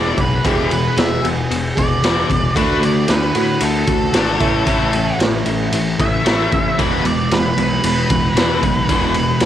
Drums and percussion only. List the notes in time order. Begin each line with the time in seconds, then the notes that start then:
0.17 kick, ride
0.44 kick, ride
0.71 ride
0.97 snare, ride
1.25 ride
1.51 ride
1.77 kick, ride
2.04 snare, ride
2.30 kick, ride
2.56 kick, ride
2.83 ride
3.08 snare, ride
3.35 ride
3.61 ride
3.87 kick, ride
4.14 snare, ride
4.40 kick, ride
4.67 kick, ride
4.93 ride
5.20 snare, ride
5.46 ride
5.73 ride
6.00 kick, ride
6.26 snare, ride
6.52 kick, ride
6.79 kick, ride
7.05 ride
7.31 snare, ride
7.58 ride
7.84 ride
8.10 kick, ride
8.37 snare, ride
8.63 kick, ride
8.89 kick, ride
9.14 ride
9.40 snare, ride